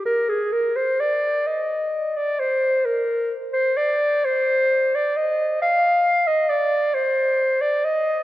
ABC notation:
X:1
M:6/8
L:1/16
Q:3/8=44
K:Cm
V:1 name="Clarinet"
B A B c d2 e3 d c2 | B3 c d2 c3 d e2 | f3 e d2 c3 d e2 |]